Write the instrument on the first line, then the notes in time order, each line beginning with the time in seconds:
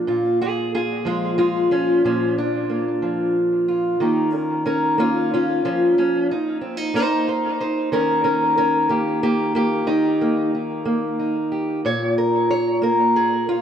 steel-string acoustic guitar
Already playing: A#3 D4
0.07 A#2 F4
0.42 F4 G#4
0.75 F4 G#4
1.05 F3 G#3 F4
1.38 G#3 F4
1.71 F3 C#4
2.05 A#2 F3 C#4
2.38 D4
2.70 A#3
3.02 F3
3.68 F4
4.00 D#3 A#3 D#4 G4
4.33 C#4 A#4
4.66 C#4 A#4
4.98 A#3 C#4 F4
5.34 C#4 F4
5.65 F3 C#4
5.98 F3 C#4
6.31 D#4
6.61 C4
6.77 D#4
6.94 A#3 D#4 C5
7.28 D#4 C5
7.61 D#4 C5
7.92 D#3 C#4 A#4
8.24 C#4 A#4
8.57 C#4 A#4
8.89 A#3 G4
9.23 A#3 G4
9.55 A#3 G4
9.87 D#3 D#4
10.21 A#3
10.55 D#4
10.85 A#3
11.19 D#4
11.52 G4
11.85 A#2 C#5
12.18 A#4
12.51 C#5
12.82 A#3 A#4
13.16 G#4
13.49 F4